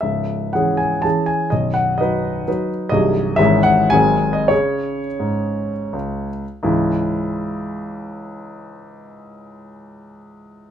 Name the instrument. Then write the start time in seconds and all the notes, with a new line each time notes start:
grand piano
0.01 C#1 C#2 E5
0.53 E3 C#4 G#4 F#5
0.77 G#5
1.02 E3 C#4 G#4 A5
1.26 G#5
1.50 B0 B1 D#5
1.74 F#5
1.98 F#3 D#4 B4 D#5
2.47 F#3 D#4 B4
2.89 C1 C2 F#3 D#4 G#4 D#5
3.36 G#1 G#2 E3 C#4 G#4 E5
3.63 F#5
3.90 G#1 G#2 F#3 C4 G#4 G#5
4.33 D#5
4.48 C#3 C#4 G#4 C#5
5.20 G#2
5.93 C#2
6.63 C#2 G#2 E3 G#3 C#4 E4